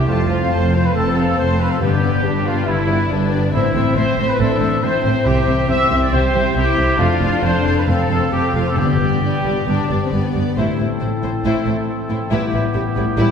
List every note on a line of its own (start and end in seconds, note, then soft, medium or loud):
0.00 0.10 C3 soft
0.00 0.11 G3 soft
0.00 0.51 C4 soft
0.00 0.10 E4 soft
0.00 0.10 G4 soft
0.00 0.10 C5 soft
0.08 0.47 F1 soft
0.08 1.83 F2 soft
0.08 0.47 F2 medium
0.08 0.29 A3 soft
0.08 1.78 C4 medium
0.08 0.52 F4 medium
0.08 0.29 A4 soft
0.08 0.29 A5 soft
0.30 0.52 C4 soft
0.30 1.16 F4 soft
0.30 0.52 C5 soft
0.30 0.52 F5 soft
0.51 0.90 F1 soft
0.51 0.90 F2 medium
0.51 0.73 A3 soft
0.51 0.73 A4 soft
0.51 0.72 C5 medium
0.51 0.74 A5 soft
0.73 0.95 C4 soft
0.73 1.58 A4 soft
0.73 0.84 C5 medium
0.73 0.95 C5 soft
0.73 0.95 F5 soft
0.85 0.95 B4 medium
0.95 1.33 F1 medium
0.95 1.33 F2 soft
0.95 1.83 C3 soft
0.95 1.15 A3 soft
0.95 1.37 A4 medium
0.95 1.16 A4 soft
0.95 1.16 A5 soft
1.17 1.39 C4 soft
1.17 1.83 F4 soft
1.17 1.39 C5 soft
1.17 1.38 F5 soft
1.38 1.76 F1 medium
1.38 1.76 F2 medium
1.38 1.60 A3 soft
1.38 1.83 C4 soft
1.38 1.60 A4 soft
1.38 1.59 C5 medium
1.38 1.60 A5 soft
1.59 1.81 C4 soft
1.59 1.83 A4 soft
1.59 1.70 B4 medium
1.59 1.81 C5 soft
1.59 1.82 F5 soft
1.71 1.81 A4 medium
1.80 2.20 G1 medium
1.80 2.41 G2 medium
1.80 3.55 G2 soft
1.80 2.19 G2 medium
1.80 2.24 B3 medium
1.80 2.02 D4 soft
1.80 2.45 G4 medium
1.80 2.01 G4 soft
1.80 2.01 B4 soft
2.03 2.25 B3 soft
2.03 2.88 D4 soft
2.03 2.25 B4 soft
2.03 2.25 D5 soft
2.24 2.62 G1 medium
2.24 2.63 G2 soft
2.24 3.10 B3 soft
2.24 2.46 D4 soft
2.24 2.67 D4 medium
2.24 2.46 G4 soft
2.24 2.46 B4 soft
2.46 2.68 B3 soft
2.46 2.67 F4 medium
2.46 3.31 G4 soft
2.46 2.67 B4 medium
2.46 2.68 D5 soft
2.67 3.05 G1 medium
2.67 3.06 G2 medium
2.67 3.55 D3 soft
2.67 2.87 D4 soft
2.67 3.10 E4 medium
2.67 3.11 E4 medium
2.67 2.87 G4 soft
2.67 2.88 B4 soft
2.89 3.11 B3 soft
2.89 3.55 D4 soft
2.89 3.11 B4 soft
2.89 3.10 D5 soft
3.10 3.48 G1 medium
3.10 3.49 G2 medium
3.10 3.55 B3 soft
3.10 3.53 D4 medium
3.10 3.32 D4 soft
3.10 3.32 G4 soft
3.10 3.32 B4 soft
3.32 3.54 B3 soft
3.32 3.55 G4 soft
3.32 3.54 B4 soft
3.32 3.53 D5 soft
3.52 3.61 A1 medium
3.52 5.27 A2 medium
3.52 3.62 A2 medium
3.52 4.37 C4 medium
3.52 3.75 C4 medium
3.52 3.93 E4 medium
3.52 3.74 C5 soft
3.52 3.73 E5 soft
3.74 3.82 A1 medium
3.74 3.84 A2 soft
3.74 4.60 C4 soft
3.74 3.96 C4 soft
3.74 3.96 C5 soft
3.74 3.95 E5 soft
3.95 4.03 A1 medium
3.95 4.05 A2 medium
3.95 4.16 C4 soft
3.95 4.16 C5 medium
3.95 4.17 C5 soft
3.95 4.17 E5 soft
4.17 4.26 A1 medium
4.17 4.27 A2 medium
4.17 4.39 C4 medium
4.17 4.28 C5 medium
4.17 5.03 C5 medium
4.17 4.39 C5 soft
4.17 4.38 E5 soft
4.29 4.39 B4 medium
4.38 4.47 A1 medium
4.38 4.47 A2 medium
4.38 4.81 E3 soft
4.38 4.61 C4 medium
4.38 4.82 D4 medium
4.38 4.82 A4 medium
4.38 4.61 C5 medium
4.38 4.60 E5 medium
4.60 4.68 A1 medium
4.60 4.69 A2 medium
4.60 5.68 C4 medium
4.60 4.82 C4 medium
4.60 4.82 C5 soft
4.60 4.81 E5 soft
4.82 4.90 A1 medium
4.82 4.91 A2 medium
4.82 5.28 E3 medium
4.82 5.67 C4 medium
4.82 5.04 C4 soft
4.82 5.26 C5 medium
4.82 5.03 C5 soft
4.82 5.03 E5 soft
5.04 5.12 A1 medium
5.04 5.13 A2 medium
5.04 5.24 C4 medium
5.04 5.90 C5 soft
5.04 5.24 C5 medium
5.04 5.24 E5 medium
5.25 5.34 C2 medium
5.25 7.02 C3 medium
5.25 5.34 C3 medium
5.25 5.46 C4 medium
5.25 5.69 G4 medium
5.25 5.46 C5 medium
5.25 5.46 E5 medium
5.47 5.55 C2 medium
5.47 5.55 C3 soft
5.47 5.68 C4 soft
5.47 6.34 E4 soft
5.47 5.68 C5 soft
5.47 5.68 E5 medium
5.68 5.76 C2 medium
5.68 5.77 C3 medium
5.68 6.55 C4 soft
5.68 5.90 C4 soft
5.68 6.12 C4 medium
5.68 5.90 C5 soft
5.68 5.89 E5 medium
5.68 5.90 E5 medium
5.90 5.99 C2 medium
5.90 5.99 C3 medium
5.90 6.12 C4 medium
5.90 6.77 C5 soft
5.90 6.12 C5 medium
5.90 5.95 E5 medium
5.90 6.10 E5 medium
6.02 6.13 D5 medium
6.12 6.20 C2 medium
6.12 6.21 C3 medium
6.12 7.02 G3 soft
6.12 6.33 C4 medium
6.12 6.56 G4 medium
6.12 6.56 C5 medium
6.12 6.34 C5 medium
6.12 6.33 E5 medium
6.34 6.42 C2 medium
6.34 6.43 C3 medium
6.34 6.55 C4 soft
6.34 7.02 E4 medium
6.34 6.55 C5 medium
6.34 6.54 E5 soft
6.55 6.63 C2 medium
6.55 6.65 C3 medium
6.55 7.43 C4 soft
6.55 6.77 C4 medium
6.55 6.99 E4 medium
6.55 6.99 G4 medium
6.55 6.78 C5 soft
6.55 6.76 E5 medium
6.77 6.85 C2 medium
6.77 6.86 C3 medium
6.77 6.98 C4 medium
6.77 8.79 C5 soft
6.77 7.00 C5 medium
6.77 6.99 E5 soft
6.99 7.08 F1 medium
6.99 7.07 F2 medium
6.99 8.79 F2 medium
6.99 7.21 C4 medium
6.99 7.87 D4 medium
6.99 7.44 F4 medium
6.99 7.21 A4 medium
6.99 7.19 F5 medium
7.21 7.29 F1 medium
7.21 7.29 F2 medium
7.21 7.43 C4 soft
7.21 8.09 F4 medium
7.21 7.43 A4 medium
7.21 7.43 F5 soft
7.43 7.51 F1 medium
7.43 7.51 F2 medium
7.43 7.64 C4 soft
7.43 8.31 C4 soft
7.43 7.64 A4 soft
7.43 7.65 C5 medium
7.43 7.64 F5 soft
7.65 7.74 F1 medium
7.65 7.73 F2 medium
7.65 7.87 C4 soft
7.65 7.87 A4 medium
7.65 8.53 A4 soft
7.65 7.71 C5 medium
7.65 7.87 F5 soft
7.77 7.82 B4 medium
7.87 7.96 F1 medium
7.87 7.96 F2 medium
7.87 8.79 C3 soft
7.87 8.08 C4 soft
7.87 8.31 C4 medium
7.87 8.31 A4 medium
7.87 8.09 A4 medium
7.87 8.08 F5 medium
8.09 8.17 F1 medium
8.09 8.17 F2 soft
8.09 8.30 C4 soft
8.09 8.79 F4 soft
8.09 8.30 A4 soft
8.09 8.30 F5 soft
8.31 8.40 F1 medium
8.31 8.40 F2 medium
8.31 8.54 C4 soft
8.31 8.79 C4 soft
8.31 8.77 C4 medium
8.31 8.54 G4 medium
8.31 8.54 A4 soft
8.31 8.54 F5 soft
8.54 8.62 F1 medium
8.54 8.63 F2 soft
8.54 8.77 C4 soft
8.54 8.65 F4 medium
8.54 8.79 A4 soft
8.54 8.77 A4 soft
8.54 8.77 F5 soft
8.66 8.77 A4 medium
8.76 8.85 G1 soft
8.76 9.41 G2 medium
8.76 8.85 G2 medium
8.76 10.59 G2 soft
8.76 9.17 B3 medium
8.76 8.99 B3 medium
8.76 10.12 G4 medium
8.76 8.99 G4 soft
8.76 9.00 D5 soft
8.99 9.07 G1 medium
8.99 9.08 G2 soft
8.99 9.21 B3 soft
8.99 9.89 D4 soft
8.99 9.21 G4 soft
8.99 9.22 D5 soft
9.22 9.31 G1 medium
9.22 9.31 G2 soft
9.22 9.64 G3 medium
9.22 9.44 B3 soft
9.22 10.11 B3 soft
9.22 9.45 G4 soft
9.22 9.43 D5 soft
9.45 9.53 G1 medium
9.45 9.54 G2 medium
9.45 9.67 B3 soft
9.45 10.34 G4 soft
9.45 9.67 G4 soft
9.45 9.67 D5 soft
9.67 9.75 G1 medium
9.67 9.76 G2 soft
9.67 10.59 D3 soft
9.67 9.89 B3 soft
9.67 9.90 D4 medium
9.67 9.89 G4 soft
9.67 9.88 D5 medium
9.89 9.98 G1 soft
9.89 9.98 G2 soft
9.89 10.11 B3 soft
9.89 10.59 D4 soft
9.89 9.95 D4 medium
9.89 10.11 G4 soft
9.89 10.11 D5 soft
10.02 10.13 C4 medium
10.12 10.20 G1 medium
10.12 10.21 G2 soft
10.12 10.59 B3 soft
10.12 10.34 B3 soft
10.12 10.57 B3 medium
10.12 10.34 G4 soft
10.12 10.33 D5 soft
10.35 10.44 G1 soft
10.35 10.43 G2 soft
10.35 10.57 B3 soft
10.35 10.59 G4 soft
10.35 10.57 G4 soft
10.35 10.57 D5 soft
10.56 10.66 A1 soft
10.56 12.30 A2 soft
10.56 10.66 A2 soft
10.56 10.78 A3 soft
10.56 12.27 C4 soft
10.56 13.31 E4 soft
10.56 10.78 E4 soft
10.56 12.28 A4 soft
10.56 10.77 C5 soft
10.79 10.87 A1 soft
10.79 10.87 A2 soft
10.79 11.65 A3 soft
10.79 10.88 A3 soft
10.79 10.88 E4 soft
10.79 10.87 C5 soft
11.01 11.10 A1 soft
11.01 11.10 A2 soft
11.01 11.11 A3 soft
11.01 11.87 E4 soft
11.01 11.09 E4 soft
11.01 11.09 C5 soft
11.22 11.32 A1 soft
11.22 11.31 A2 soft
11.22 11.32 A3 soft
11.22 12.08 C4 soft
11.22 11.31 E4 soft
11.22 11.31 C5 soft
11.44 11.53 A1 soft
11.44 11.53 A2 soft
11.44 12.33 E3 soft
11.44 11.65 A3 soft
11.44 11.65 E4 medium
11.44 11.65 C5 soft
11.66 11.74 A1 soft
11.66 11.74 A2 soft
11.66 12.33 A3 soft
11.66 11.76 A3 soft
11.66 11.75 E4 soft
11.66 11.75 C5 soft
11.88 12.73 E4 soft
12.09 12.18 A1 soft
12.09 12.18 A2 soft
12.09 12.18 A3 soft
12.09 12.33 C4 soft
12.09 12.17 E4 soft
12.09 12.18 C5 soft
12.31 12.40 A1 medium
12.31 12.39 A2 medium
12.31 13.16 A2 soft
12.31 12.51 G3 medium
12.31 13.31 B3 soft
12.31 12.52 E4 medium
12.31 13.31 G4 soft
12.31 12.52 B4 medium
12.53 12.62 A1 soft
12.53 12.61 A2 soft
12.53 12.61 G3 soft
12.53 13.31 G3 soft
12.53 12.61 E4 soft
12.53 12.61 B4 soft
12.74 12.82 A1 soft
12.74 12.83 A2 soft
12.74 12.83 G3 soft
12.74 12.82 E4 soft
12.74 13.31 E4 soft
12.74 12.82 B4 soft
12.96 13.05 A1 soft
12.96 13.04 A2 soft
12.96 13.04 G3 soft
12.96 13.31 B3 soft
12.96 13.04 E4 soft
12.96 13.04 B4 soft
13.17 13.25 A1 medium
13.17 13.31 A2 soft
13.17 13.26 A2 medium
13.17 13.31 G3 medium
13.17 13.31 E4 medium
13.17 13.31 B4 medium